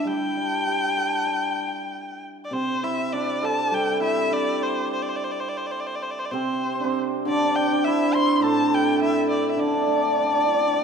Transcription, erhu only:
0.07 2.22 G5 medium
2.45 2.55 D5 medium
2.53 2.85 C5 medium
2.84 3.15 E5 medium
3.13 3.46 D5 medium
3.45 3.76 A5 medium
3.74 4.02 G5 medium
4.03 4.35 E5 medium
4.33 4.64 D5 medium
4.63 4.92 C5 medium
4.93 5.04 C5 medium
5.02 5.11 D5 medium
5.09 5.18 C5 medium
5.16 5.26 D5 medium
5.24 5.33 C5 medium
5.31 5.42 D5 medium
5.40 5.51 C5 medium
5.49 5.59 D5 medium
5.57 5.68 C5 medium
5.66 5.73 D5 medium
5.72 5.81 C5 medium
5.80 5.88 D5 medium
5.87 5.97 C5 medium
5.96 6.04 D5 medium
6.02 6.12 C5 medium
6.11 6.21 D5 medium
6.19 6.27 C5 medium
6.25 6.33 D5 medium
6.31 6.96 C5 medium
7.29 7.57 D5 medium
7.56 7.86 G5 medium
7.84 8.16 E5 medium
8.14 8.36 C6 loud
8.36 8.45 C6 medium
8.43 8.76 A5 medium
8.74 9.01 G5 medium
9.03 9.28 E5 medium
9.30 9.50 D5 medium
9.51 9.61 E5 medium
9.60 10.84 D5 medium

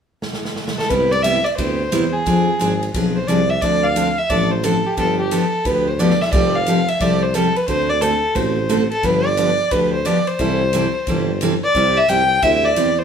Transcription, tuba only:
0.90 1.45 C2 medium
1.58 1.87 D2 medium
1.93 2.22 E2 medium
2.27 2.54 F2 medium
2.61 2.89 G#1 medium
2.94 3.23 B1 medium
3.29 3.57 C2 medium
3.62 4.16 D2 medium
4.30 4.84 A1 medium
4.97 5.32 G1 medium
5.65 6.19 D2 medium
6.33 6.87 F1 medium
7.00 7.55 C2 medium
7.68 8.22 D2 medium
8.36 8.90 A1 medium
9.03 9.58 G1 medium
9.71 10.06 D2 medium
10.39 10.94 C2 medium
11.07 11.61 G1 medium
11.75 12.02 C2 medium
12.09 12.38 C2 medium
12.42 12.71 D2 medium
12.77 13.04 E2 medium

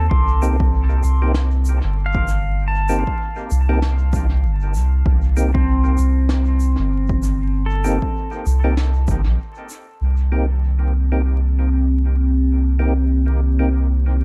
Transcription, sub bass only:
0.11 1.01 C2 medium
1.04 1.80 C2 medium
1.84 3.04 G1 medium
3.51 4.46 C2 medium
4.44 4.77 G1 medium
4.75 5.03 C2 medium
5.06 5.96 C2 medium
5.99 6.75 C2 medium
6.79 7.99 G1 medium
8.46 9.07 C2 medium
9.08 9.24 G1 loud
9.26 9.38 A#1 loud
10.01 14.24 C2 medium

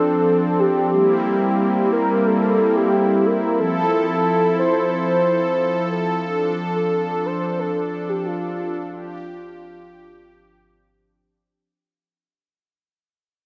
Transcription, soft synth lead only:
0.00 0.61 A4 loud
0.59 1.42 G4 loud
1.43 1.89 G4 loud
1.93 2.28 A#4 loud
2.26 2.78 A4 loud
2.76 3.28 G4 loud
3.26 3.59 A#4 medium
3.60 4.06 A4 loud
4.09 4.56 A4 loud
4.59 4.90 C5 loud
4.93 5.89 C5 loud
5.92 6.72 A4 loud
6.76 7.27 A4 loud
7.26 7.61 C5 loud
7.59 8.11 A4 medium
8.09 8.27 G4 medium
8.26 8.92 F4 medium
8.93 10.89 F4 medium

